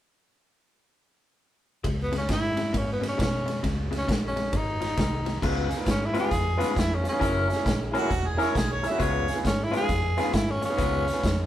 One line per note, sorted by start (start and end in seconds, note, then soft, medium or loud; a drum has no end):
1.84 2.26 C#2 medium
1.84 2.10 C#3 medium
1.84 2.10 G#3 medium
1.84 kick medium
1.84 ride medium
2.03 2.15 B3 medium
2.12 2.27 C#3 medium
2.12 2.27 G#3 medium
2.12 snare soft
2.12 ride medium
2.17 2.30 C#4 medium
2.29 2.71 G#2 medium
2.29 2.54 C#3 medium
2.29 2.55 G#3 medium
2.29 2.79 E4 medium
2.29 kick medium
2.29 snare medium
2.29 ride medium
2.57 2.72 C#3 medium
2.57 2.72 G#3 medium
2.57 snare soft
2.57 ride medium
2.73 3.16 G#2 medium
2.73 2.99 C#3 medium
2.73 2.99 A#3 medium
2.73 kick medium
2.73 ride medium
2.77 2.90 C#4 medium
2.92 3.05 B3 medium
3.01 3.16 C#3 medium
3.01 3.17 A#3 medium
3.01 ride medium
3.05 3.20 C#4 medium
3.05 snare soft
3.18 3.61 B2 medium
3.18 3.44 C#3 medium
3.18 3.44 G#3 medium
3.18 kick medium
3.18 snare loud
3.18 ride medium
3.22 3.64 C#4 medium
3.46 3.61 C#3 medium
3.46 3.61 G#3 medium
3.46 snare soft
3.46 ride medium
3.63 4.05 C#2 medium
3.63 3.89 C#3 medium
3.63 3.89 G#3 medium
3.63 kick medium
3.63 snare soft
3.63 ride medium
3.91 4.06 C#3 medium
3.91 4.06 G#3 medium
3.91 snare soft
3.91 ride medium
3.98 4.10 C#4 medium
4.08 4.51 A#1 medium
4.08 4.33 C#3 medium
4.08 4.34 G#3 medium
4.08 kick medium
4.08 snare medium
4.08 ride medium
4.28 4.58 C#4 medium
4.36 4.51 C#3 medium
4.36 4.51 G#3 medium
4.36 snare soft
4.36 ride medium
4.52 4.95 G#1 medium
4.52 4.78 G#2 medium
4.52 4.78 D#3 medium
4.52 kick medium
4.52 ride medium
4.56 5.41 D#4 medium
4.81 4.96 G#2 medium
4.81 4.96 F3 medium
4.81 snare soft
4.81 ride medium
4.97 5.40 C2 medium
4.97 5.23 G#2 medium
4.97 5.23 D#3 medium
4.97 kick medium
4.97 snare loud
4.97 ride medium
5.26 5.41 G#2 medium
5.26 5.41 D#3 medium
5.26 snare soft
5.26 ride medium
5.42 5.73 C#2 medium
5.42 5.71 C#3 medium
5.42 5.70 G#3 medium
5.42 5.69 B3 medium
5.42 5.68 F4 medium
5.42 kick medium
5.42 snare soft
5.42 crash medium
5.68 5.74 F4 soft
5.68 5.74 G#4 medium
5.68 muted clean electric guitar stroke soft
5.68 closed hi-hat medium
5.72 snare soft
5.77 5.86 B3 medium
5.77 5.86 D#4 medium
5.77 5.86 F4 medium
5.77 5.86 A#4 medium
5.85 6.17 G#2 medium
5.85 muted clean electric guitar stroke soft
5.85 kick medium
5.85 snare loud
5.85 closed hi-hat medium
5.90 6.07 C#4 medium
6.06 6.18 E4 medium
6.13 6.30 C#3 medium
6.13 6.30 G#3 medium
6.13 6.31 B3 medium
6.13 6.18 F4 soft
6.13 6.31 F4 medium
6.13 6.18 B4 soft
6.13 snare soft
6.13 closed hi-hat medium
6.20 6.30 B3 medium
6.20 6.30 D#4 medium
6.20 6.30 F4 medium
6.20 6.81 G#4 medium
6.20 6.30 G#4 medium
6.31 6.62 F2 medium
6.31 muted clean electric guitar stroke soft
6.31 kick medium
6.31 snare soft
6.31 closed hi-hat medium
6.57 6.75 C#3 medium
6.57 6.75 G#3 medium
6.57 6.67 B3 medium
6.57 6.76 B3 medium
6.57 6.67 D#4 medium
6.57 6.67 F4 medium
6.57 6.76 F4 medium
6.57 6.67 B4 medium
6.57 closed hi-hat medium
6.62 snare soft
6.76 7.07 F2 medium
6.76 6.96 E4 medium
6.76 muted clean electric guitar stroke soft
6.76 kick medium
6.76 snare loud
6.76 closed hi-hat medium
6.95 7.08 C#4 medium
7.02 7.07 F4 soft
7.02 7.08 G#4 soft
7.02 muted clean electric guitar stroke soft
7.02 closed hi-hat medium
7.07 7.94 C#4 medium
7.07 snare soft
7.11 7.20 B3 medium
7.11 7.20 D#4 medium
7.11 7.20 F4 medium
7.11 7.21 G#4 medium
7.19 7.52 F#1 medium
7.19 7.48 F#3 medium
7.19 7.48 C#4 medium
7.19 7.48 E4 medium
7.19 7.47 A#4 medium
7.19 kick medium
7.19 closed hi-hat medium
7.48 7.53 E4 soft
7.48 7.53 G#4 soft
7.48 muted clean electric guitar stroke soft
7.48 snare soft
7.48 closed hi-hat medium
7.55 7.65 A#3 medium
7.55 7.65 C#4 medium
7.55 7.65 E4 medium
7.55 7.65 G#4 medium
7.65 7.97 A#1 medium
7.65 muted clean electric guitar stroke soft
7.65 kick medium
7.65 snare loud
7.65 closed hi-hat medium
7.91 8.09 F#3 medium
7.91 8.10 C#4 medium
7.91 7.97 E4 medium
7.91 8.10 E4 medium
7.91 7.97 G#4 medium
7.91 8.10 A#4 medium
7.91 closed hi-hat medium
7.96 8.29 F#4 medium
7.96 snare soft
8.01 8.10 A#3 medium
8.01 8.10 C#4 medium
8.01 8.10 E4 medium
8.01 8.10 G#4 medium
8.10 8.41 E1 medium
8.10 muted clean electric guitar stroke soft
8.10 kick medium
8.10 snare soft
8.10 closed hi-hat medium
8.27 8.45 G#4 medium
8.37 8.54 F#3 medium
8.37 8.46 A#3 medium
8.37 8.46 C#4 medium
8.37 8.55 C#4 medium
8.37 8.46 E4 medium
8.37 8.55 E4 medium
8.37 8.46 G#4 loud
8.37 8.55 A#4 medium
8.37 closed hi-hat medium
8.41 8.59 C#5 medium
8.41 snare soft
8.55 8.86 B1 medium
8.55 8.74 G#4 medium
8.55 muted clean electric guitar stroke soft
8.55 kick medium
8.55 snare loud
8.55 closed hi-hat medium
8.72 8.91 C#5 medium
8.82 8.87 E4 soft
8.82 8.87 G#4 medium
8.82 muted clean electric guitar stroke soft
8.82 snare soft
8.82 closed hi-hat medium
8.89 8.99 A#3 medium
8.89 8.99 C#4 medium
8.89 8.99 E4 medium
8.89 9.00 F#4 medium
8.89 9.03 E5 medium
8.98 9.30 C#2 medium
8.98 9.27 C#3 medium
8.98 9.27 G#3 medium
8.98 9.27 B3 medium
8.98 9.27 F4 medium
8.98 9.36 C#5 medium
8.98 kick medium
8.98 closed hi-hat medium
9.28 9.32 F4 soft
9.28 9.32 G#4 medium
9.28 muted clean electric guitar stroke medium
9.28 snare soft
9.28 closed hi-hat medium
9.35 9.44 B3 medium
9.35 9.44 D#4 medium
9.35 9.44 F4 medium
9.35 9.44 G#4 medium
9.43 9.75 G#2 medium
9.43 9.65 C#4 medium
9.43 muted clean electric guitar stroke soft
9.43 kick medium
9.43 snare loud
9.43 closed hi-hat medium
9.64 9.76 E4 medium
9.71 9.87 C#3 medium
9.71 9.88 G#3 medium
9.71 9.88 B3 medium
9.71 9.88 F4 loud
9.71 9.77 F4 soft
9.71 9.77 B4 soft
9.71 snare soft
9.71 closed hi-hat medium
9.77 9.88 B3 medium
9.77 9.89 D#4 medium
9.77 9.89 F4 medium
9.77 10.36 G#4 medium
9.81 9.89 G#4 medium
9.88 10.20 F2 medium
9.88 muted clean electric guitar stroke soft
9.88 kick medium
9.88 snare soft
9.88 closed hi-hat medium
10.17 10.33 C#3 medium
10.17 10.34 G#3 medium
10.17 10.25 B3 medium
10.17 10.33 B3 medium
10.17 10.25 D#4 medium
10.17 10.25 F4 medium
10.17 10.34 F4 medium
10.17 10.25 G#4 medium
10.17 snare soft
10.17 closed hi-hat medium
10.33 10.64 G#2 medium
10.33 10.52 E4 medium
10.33 muted clean electric guitar stroke soft
10.33 kick medium
10.33 snare loud
10.33 closed hi-hat medium
10.51 10.64 C#4 medium
10.62 11.46 C#4 medium
10.62 10.66 F4 soft
10.62 10.66 G#4 soft
10.62 muted clean electric guitar stroke soft
10.62 snare soft
10.62 closed hi-hat medium
10.69 10.78 B3 medium
10.69 10.78 D#4 medium
10.69 10.78 F4 medium
10.69 10.78 G#4 medium
10.77 11.09 C#2 medium
10.77 11.06 C#3 medium
10.77 11.06 G#3 medium
10.77 11.06 B3 medium
10.77 11.05 F4 medium
10.77 kick medium
10.77 closed hi-hat medium
11.06 11.11 F4 soft
11.06 11.11 G#4 soft
11.06 muted clean electric guitar stroke medium
11.06 snare soft
11.06 closed hi-hat medium
11.13 11.22 B3 medium
11.13 11.22 D#4 medium
11.13 11.22 F4 medium
11.13 11.23 G#4 medium
11.22 11.46 F2 medium
11.22 muted clean electric guitar stroke soft
11.22 kick medium
11.22 snare medium
11.22 closed hi-hat medium